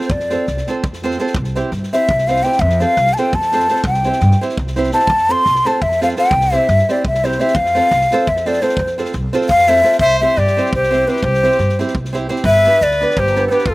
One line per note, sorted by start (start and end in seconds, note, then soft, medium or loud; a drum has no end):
0.00 0.13 C5 medium
0.00 snare soft
0.10 0.33 F2 loud
0.10 0.69 D5 medium
0.10 kick loud
0.20 snare soft
0.30 0.45 C4 medium
0.30 0.45 F4 medium
0.30 0.45 A4 medium
0.30 0.46 C5 medium
0.30 snare soft
0.47 0.60 C2 medium
0.47 snare soft
0.57 snare soft
0.67 0.82 C4 medium
0.67 0.82 F4 medium
0.67 0.83 A4 medium
0.67 0.83 C5 medium
0.67 snare soft
0.84 1.15 F2 medium
0.84 kick loud
0.93 snare soft
1.02 1.17 C4 medium
1.02 1.17 F4 medium
1.02 1.18 A4 medium
1.02 1.18 C5 medium
1.02 snare soft
1.11 snare soft
1.18 1.33 C4 medium
1.18 1.33 F4 medium
1.18 1.33 A4 medium
1.18 1.34 C5 medium
1.18 snare soft
1.27 snare soft
1.35 1.58 C2 loud
1.35 kick loud
1.44 snare soft
1.55 1.70 C4 medium
1.55 1.70 E4 medium
1.55 1.70 G4 medium
1.55 1.70 C5 medium
1.55 snare soft
1.72 1.85 G2 medium
1.72 snare soft
1.83 snare soft
1.93 2.07 C4 medium
1.93 2.07 E4 medium
1.93 2.07 G4 medium
1.93 2.08 C5 medium
1.93 2.29 E5 medium
1.93 snare soft
2.09 2.40 C2 loud
2.09 kick loud
2.18 snare soft
2.27 2.42 C4 medium
2.27 2.42 E4 medium
2.27 2.42 G4 medium
2.27 2.43 C5 medium
2.27 2.45 F5 medium
2.27 snare soft
2.36 snare soft
2.43 2.58 C4 medium
2.43 2.58 E4 medium
2.43 2.58 G4 medium
2.43 2.58 C5 medium
2.43 2.62 G5 medium
2.43 snare soft
2.52 snare soft
2.59 2.83 F2 loud
2.59 2.82 E5 loud
2.59 kick medium
2.69 snare soft
2.80 2.94 C4 medium
2.80 2.94 F4 medium
2.80 2.95 A4 medium
2.80 2.95 C5 medium
2.80 3.15 F5 loud
2.80 snare soft
2.96 3.09 C2 loud
2.96 snare soft
3.07 snare soft
3.14 3.20 A5 medium
3.14 snare soft
3.18 3.32 C4 medium
3.18 3.32 F4 medium
3.18 3.32 A4 medium
3.18 3.32 C5 medium
3.18 3.36 G5 medium
3.33 3.65 F2 medium
3.33 3.85 A5 medium
3.33 kick medium
3.41 snare soft
3.52 3.66 C4 medium
3.52 3.66 F4 medium
3.52 3.66 A4 medium
3.52 3.67 C5 medium
3.52 snare soft
3.60 snare soft
3.68 3.82 C4 medium
3.68 3.82 F4 medium
3.68 3.83 A4 medium
3.68 3.83 C5 medium
3.68 snare soft
3.76 snare soft
3.84 4.07 C2 loud
3.84 4.39 G5 medium
3.84 kick loud
3.94 snare soft
4.03 4.19 C4 medium
4.03 4.19 E4 medium
4.03 4.19 G4 medium
4.03 4.20 C5 medium
4.03 snare soft
4.12 snare soft
4.20 4.34 G2 loud
4.20 snare soft
4.31 snare soft
4.41 4.55 C4 medium
4.41 4.55 E4 medium
4.41 4.56 G4 medium
4.41 4.56 C5 medium
4.41 snare soft
4.49 snare soft
4.57 4.89 C2 medium
4.57 kick medium
4.67 snare soft
4.76 4.90 C4 medium
4.76 4.90 E4 medium
4.76 4.91 G4 medium
4.76 4.91 C5 medium
4.76 snare soft
4.83 snare soft
4.91 5.06 C4 medium
4.91 5.06 E4 medium
4.91 5.07 G4 medium
4.91 5.07 C5 medium
4.91 5.33 A5 loud
4.91 snare soft
4.99 snare soft
5.07 5.31 F2 loud
5.07 kick medium
5.17 snare soft
5.29 5.42 C4 medium
5.29 5.43 F4 medium
5.29 5.43 A4 medium
5.29 5.43 C5 medium
5.29 5.68 C6 loud
5.45 5.58 C2 loud
5.45 snare soft
5.55 snare soft
5.65 5.79 C4 medium
5.65 5.79 F4 medium
5.65 5.79 A4 medium
5.65 5.80 C5 medium
5.65 5.84 A5 medium
5.65 snare soft
5.82 6.13 F2 medium
5.82 6.01 E5 medium
5.82 kick medium
5.91 snare soft
6.01 6.14 C4 medium
6.01 6.14 F4 medium
6.01 6.15 A4 medium
6.01 6.15 C5 medium
6.01 6.09 F5 medium
6.01 snare soft
6.08 snare soft
6.16 6.30 C4 medium
6.16 6.30 F4 medium
6.16 6.30 A4 medium
6.16 6.30 C5 medium
6.16 6.57 G5 loud
6.16 snare soft
6.24 snare soft
6.31 6.54 C2 loud
6.31 kick loud
6.41 snare soft
6.51 6.66 C4 medium
6.51 6.66 E4 medium
6.51 6.66 G4 medium
6.51 6.67 C5 medium
6.51 snare soft
6.55 6.93 E5 loud
6.68 6.81 G2 loud
6.68 snare soft
6.78 snare soft
6.88 7.03 C4 medium
6.88 7.03 E4 medium
6.88 7.03 G4 medium
6.88 7.03 C5 medium
6.88 7.07 D5 medium
6.88 snare soft
7.05 7.36 C2 medium
7.05 7.27 E5 medium
7.05 kick medium
7.14 snare soft
7.23 7.37 C4 medium
7.23 7.37 E4 medium
7.23 7.38 G4 medium
7.23 7.42 C5 medium
7.23 7.38 C5 medium
7.23 snare soft
7.32 snare soft
7.39 7.53 C4 medium
7.39 7.53 E4 medium
7.39 7.53 G4 medium
7.39 7.53 C5 medium
7.39 7.57 E5 medium
7.39 snare soft
7.48 snare soft
7.55 7.78 F2 loud
7.55 8.29 F5 loud
7.55 kick medium
7.66 snare soft
7.75 7.89 C4 medium
7.75 7.89 F4 medium
7.75 7.90 A4 medium
7.75 7.90 C5 medium
7.75 snare soft
7.91 8.04 C2 loud
7.91 snare soft
8.01 snare soft
8.10 8.26 C4 medium
8.10 8.26 F4 medium
8.10 8.26 A4 medium
8.10 8.27 C5 loud
8.10 snare soft
8.27 8.58 F2 medium
8.27 8.48 E5 medium
8.27 kick medium
8.36 snare soft
8.45 8.60 C4 medium
8.45 8.60 F4 medium
8.45 8.60 A4 medium
8.45 8.60 C5 medium
8.45 8.64 D5 medium
8.45 snare soft
8.53 snare soft
8.61 8.75 C4 medium
8.61 8.75 F4 medium
8.61 8.76 A4 medium
8.61 8.99 C5 medium
8.61 8.76 C5 medium
8.61 snare soft
8.69 snare soft
8.77 9.01 F2 loud
8.77 kick medium
8.86 snare soft
8.98 9.12 C4 medium
8.98 9.12 F4 medium
8.98 9.12 A4 medium
8.98 9.13 C5 medium
8.98 snare soft
9.05 snare soft
9.12 9.26 C2 loud
9.12 snare soft
9.33 9.47 C4 medium
9.33 9.48 F4 medium
9.33 9.48 A4 medium
9.33 9.48 C5 loud
9.33 snare soft
9.41 snare soft
9.49 9.81 F2 loud
9.49 9.70 F5 loud
9.49 kick medium
9.58 snare soft
9.67 9.82 C4 medium
9.67 9.82 F4 medium
9.67 9.82 A4 medium
9.67 9.83 C5 medium
9.67 9.99 E5 loud
9.67 snare soft
9.76 snare soft
9.84 9.97 C4 medium
9.84 9.98 F4 medium
9.84 9.98 A4 medium
9.84 9.98 C5 medium
9.84 snare soft
9.92 snare soft
9.99 10.23 C2 medium
9.99 10.20 C5 loud
9.99 10.19 E5 loud
9.99 kick medium
10.10 snare soft
10.20 10.35 C4 medium
10.20 10.35 E4 medium
10.20 10.35 G4 medium
10.20 10.40 C5 medium
10.20 10.35 C5 medium
10.20 10.39 E5 medium
10.37 10.59 G2 medium
10.37 10.74 G4 medium
10.37 10.74 D5 loud
10.37 snare soft
10.47 snare soft
10.57 10.70 C4 medium
10.57 10.71 E4 medium
10.57 10.71 G4 medium
10.57 10.71 C5 medium
10.57 snare soft
10.66 snare soft
10.73 11.03 C2 loud
10.73 11.09 G4 medium
10.73 11.09 C5 medium
10.73 kick medium
10.83 snare soft
10.91 11.04 C4 medium
10.91 11.05 E4 medium
10.91 11.05 G4 medium
10.91 11.05 C5 medium
10.91 snare soft
11.07 11.20 C4 medium
11.07 11.21 E4 medium
11.07 11.23 G4 medium
11.07 11.21 G4 medium
11.07 11.25 B4 medium
11.07 11.21 C5 medium
11.07 snare soft
11.16 snare soft
11.23 11.45 C2 loud
11.23 11.80 G4 medium
11.23 11.79 C5 loud
11.23 kick medium
11.34 snare soft
11.43 11.57 C4 medium
11.43 11.57 E4 medium
11.43 11.57 G4 medium
11.43 11.57 C5 medium
11.43 snare soft
11.51 snare soft
11.59 11.81 G2 loud
11.59 snare soft
11.69 snare soft
11.79 11.92 C4 medium
11.79 11.93 E4 medium
11.79 11.93 G4 medium
11.79 11.94 C5 medium
11.79 snare soft
11.88 snare soft
11.95 12.25 C2 medium
11.95 kick medium
12.05 snare soft
12.13 12.26 C4 medium
12.13 12.27 E4 medium
12.13 12.27 G4 medium
12.13 12.27 C5 medium
12.13 snare soft
12.28 12.42 C4 medium
12.28 12.42 E4 medium
12.28 12.42 G4 medium
12.28 12.43 C5 medium
12.28 snare soft
12.36 snare soft
12.44 12.67 G1 loud
12.44 12.81 B4 loud
12.44 12.84 E5 loud
12.44 kick medium
12.54 snare soft
12.64 12.79 B3 medium
12.64 12.79 D4 medium
12.64 12.79 G4 medium
12.64 12.79 B4 medium
12.64 snare soft
12.72 snare soft
12.81 13.03 D2 medium
12.81 13.20 B4 medium
12.81 13.20 D5 loud
12.81 snare soft
12.91 snare soft
13.01 13.14 B3 medium
13.01 13.14 D4 medium
13.01 13.15 G4 medium
13.01 13.15 B4 medium
13.01 snare soft
13.10 snare soft
13.17 13.47 G1 loud
13.17 13.46 G4 medium
13.17 13.48 C5 medium
13.17 kick loud
13.26 snare soft
13.35 13.48 B3 medium
13.35 13.49 D4 medium
13.35 13.49 G4 medium
13.35 13.49 B4 medium
13.35 snare soft
13.47 13.64 B3 medium
13.47 13.68 G4 medium
13.47 13.52 A4 medium
13.47 13.54 C5 medium
13.47 snare soft
13.51 13.64 D4 medium
13.51 13.64 G4 medium
13.51 13.64 B4 medium
13.51 13.71 B4 medium
13.59 snare soft
13.66 13.74 F1 medium
13.66 13.74 F4 medium
13.66 kick loud
13.70 13.74 A4 loud